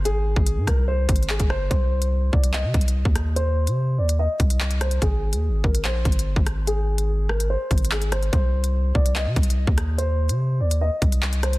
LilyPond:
<<
  \new Staff \with { instrumentName = "Grand piano" } { \time 4/4 \key c \minor \tempo 4 = 145 aes'4. bes'8 c''4 aes'8 c''8 | c''4. d''8 ees''2 | c''4. d''8 ees''4. c''8 | aes'4. bes'8 c''2 |
aes'4. bes'8 c''4 aes'8 c''8 | c''4. d''8 ees''2 | c''4. d''8 ees''4. c''8 | }
  \new Staff \with { instrumentName = "808-style bass" } { \clef bass \time 4/4 \key c \minor g,,32 aes,,8~ aes,,32 aes,,8 aes,16 c,4 aes,,8. g,,8. | c,4. c,8. c16 c,8. ees,8.~ | ees,8. c8. ees,8. r16 c,4. | aes,,8. ees,16. aes,,16. aes,,8 bes,,8 aes,,8 g,,16 aes,,8.~ |
aes,,2~ aes,,16 r16 aes,,4. | c,4. c,8. c16 c,8. ees,8.~ | ees,8. c8. ees,8. r16 c,4. | }
  \new DrumStaff \with { instrumentName = "Drums" } \drummode { \time 4/4 hh8. bd16 hh8 <hh bd ss>8 \tuplet 3/2 { r16 r16 r16 <hh bd>16 hh16 hh16 } hc16 <hh bd>16 ss8 | <hh bd>8. hh16 r8 bd16 hh16 \tuplet 3/2 { hc16 r16 r16 <hh bd>16 hh16 hh16 } r16 bd16 <hh ss>8 | hh8. hh16 r8. hh16 r8 <hh bd>16 hh16 hc16 hh16 <hh ss>16 hh16 | <hh bd>8. hh16 r8 bd16 hh16 \tuplet 3/2 { hc16 r16 r16 <hh bd>16 hh16 hh16 } r16 bd16 <hh ss>8 |
hh8. hh16 r8 ss16 hh16 \tuplet 3/2 { r16 r16 r16 <hh bd>16 hh16 hh16 } hc16 hh16 <hh ss>16 hh16 | <hh bd>8. hh16 r8 bd16 hh16 \tuplet 3/2 { hc16 r16 r16 <hh bd>16 hh16 hh16 } r16 bd16 <hh ss>8 | hh8. hh16 r8. hh16 r8 <hh bd>16 hh16 hc16 hh16 <hh ss>16 hh16 | }
>>